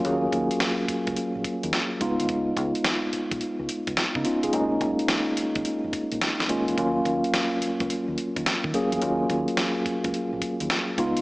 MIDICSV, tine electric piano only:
0, 0, Header, 1, 2, 480
1, 0, Start_track
1, 0, Key_signature, -6, "minor"
1, 0, Tempo, 560748
1, 39, Time_signature, 4, 2, 24, 8
1, 9599, End_track
2, 0, Start_track
2, 0, Title_t, "Tine electric piano"
2, 0, Program_c, 0, 4
2, 0, Control_c, 0, 64, 127
2, 0, Note_on_c, 0, 54, 82
2, 0, Note_on_c, 0, 58, 80
2, 0, Note_on_c, 0, 61, 75
2, 0, Note_on_c, 0, 65, 86
2, 37, Note_off_c, 0, 54, 0
2, 37, Note_on_c, 0, 54, 79
2, 41, Note_off_c, 0, 58, 0
2, 41, Note_on_c, 0, 58, 71
2, 45, Note_off_c, 0, 61, 0
2, 45, Note_on_c, 0, 61, 74
2, 48, Note_on_c, 0, 68, 89
2, 790, Note_off_c, 0, 54, 0
2, 792, Note_off_c, 0, 58, 0
2, 794, Note_off_c, 0, 61, 0
2, 795, Note_off_c, 0, 68, 0
2, 1717, Note_on_c, 0, 56, 89
2, 1720, Note_on_c, 0, 59, 84
2, 1723, Note_on_c, 0, 63, 83
2, 1726, Note_off_c, 0, 65, 0
2, 1726, Note_on_c, 0, 65, 96
2, 1730, Control_c, 0, 64, 0
2, 1866, Control_c, 0, 64, 127
2, 2502, Note_off_c, 0, 56, 0
2, 2503, Note_off_c, 0, 59, 0
2, 2505, Note_off_c, 0, 63, 0
2, 2506, Note_off_c, 0, 65, 0
2, 3561, Note_on_c, 0, 63, 67
2, 3566, Note_on_c, 0, 59, 54
2, 3637, Note_off_c, 0, 63, 0
2, 3639, Note_off_c, 0, 59, 0
2, 3642, Note_on_c, 0, 65, 67
2, 3645, Note_on_c, 0, 61, 58
2, 3792, Note_off_c, 0, 65, 0
2, 3793, Note_off_c, 0, 61, 0
2, 3799, Note_on_c, 0, 68, 73
2, 3804, Note_on_c, 0, 65, 56
2, 3876, Note_on_c, 0, 56, 79
2, 3880, Note_on_c, 0, 58, 78
2, 3883, Note_on_c, 0, 61, 76
2, 3888, Note_on_c, 0, 63, 84
2, 3891, Control_c, 0, 64, 0
2, 4027, Note_off_c, 0, 68, 0
2, 4029, Note_off_c, 0, 65, 0
2, 4050, Control_c, 0, 64, 127
2, 4629, Note_off_c, 0, 56, 0
2, 4631, Note_off_c, 0, 58, 0
2, 4633, Note_off_c, 0, 61, 0
2, 4635, Note_off_c, 0, 63, 0
2, 5558, Note_on_c, 0, 56, 80
2, 5561, Note_on_c, 0, 58, 75
2, 5564, Note_on_c, 0, 61, 77
2, 5568, Note_on_c, 0, 65, 92
2, 5762, Note_off_c, 0, 56, 0
2, 5764, Note_off_c, 0, 58, 0
2, 5765, Note_off_c, 0, 61, 0
2, 5767, Note_off_c, 0, 65, 0
2, 5801, Note_on_c, 0, 54, 81
2, 5805, Note_on_c, 0, 58, 67
2, 5809, Note_on_c, 0, 61, 75
2, 5810, Control_c, 0, 64, 0
2, 5811, Note_on_c, 0, 65, 85
2, 5976, Control_c, 0, 64, 127
2, 6552, Note_off_c, 0, 54, 0
2, 6554, Note_off_c, 0, 58, 0
2, 6556, Note_off_c, 0, 61, 0
2, 6557, Note_off_c, 0, 65, 0
2, 7479, Note_on_c, 0, 54, 76
2, 7483, Note_on_c, 0, 58, 73
2, 7486, Note_on_c, 0, 61, 71
2, 7490, Note_on_c, 0, 68, 97
2, 7683, Note_off_c, 0, 54, 0
2, 7684, Note_off_c, 0, 58, 0
2, 7686, Note_off_c, 0, 61, 0
2, 7688, Note_off_c, 0, 68, 0
2, 7722, Note_on_c, 0, 54, 76
2, 7724, Note_on_c, 0, 58, 67
2, 7728, Note_on_c, 0, 61, 69
2, 7732, Note_on_c, 0, 65, 86
2, 8472, Note_off_c, 0, 54, 0
2, 8473, Note_off_c, 0, 58, 0
2, 8475, Note_off_c, 0, 61, 0
2, 8477, Note_off_c, 0, 65, 0
2, 9398, Note_on_c, 0, 56, 81
2, 9402, Note_on_c, 0, 59, 79
2, 9405, Note_on_c, 0, 63, 79
2, 9410, Note_on_c, 0, 65, 92
2, 9411, Control_c, 0, 64, 0
2, 9576, Control_c, 0, 64, 127
2, 9599, Note_off_c, 0, 56, 0
2, 9599, Note_off_c, 0, 59, 0
2, 9599, Note_off_c, 0, 63, 0
2, 9599, Note_off_c, 0, 65, 0
2, 9599, End_track
0, 0, End_of_file